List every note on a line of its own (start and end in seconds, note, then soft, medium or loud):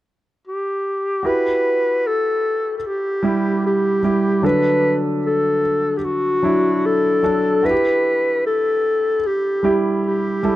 0.47 1.28 G4 medium
1.23 2.76 E4 soft
1.23 2.76 F#4 soft
1.23 2.76 G4 soft
1.23 2.08 B4 medium
2.07 2.77 A4 medium
2.78 2.88 A4 soft
2.87 3.65 G4 medium
3.23 3.99 G3 medium
3.23 4.00 E4 soft
3.23 4.00 G4 medium
3.67 4.47 G4 medium
4.03 4.41 G3 soft
4.03 4.42 E4 soft
4.03 4.42 G4 soft
4.42 5.60 D3 soft
4.42 5.95 F#3 soft
4.42 5.96 D4 soft
4.42 5.96 A4 medium
4.42 4.98 B4 medium
5.26 5.99 A4 medium
5.98 6.06 G4 soft
6.04 6.88 F#4 medium
6.43 7.19 F#3 medium
6.43 7.20 D4 soft
6.43 7.20 E4 medium
6.86 7.67 A4 medium
7.23 7.61 F#3 soft
7.23 7.62 D4 soft
7.23 7.62 A4 medium
7.63 9.16 E4 soft
7.63 7.71 F#4 soft
7.63 8.45 B4 medium
7.71 9.20 G4 medium
8.47 9.28 A4 medium
9.27 9.78 G4 medium
9.63 10.40 G3 medium
9.63 10.40 E4 medium
9.63 10.40 G4 medium
10.06 10.56 G4 medium
10.43 10.56 G3 medium
10.43 10.56 E4 soft
10.43 10.56 A4 medium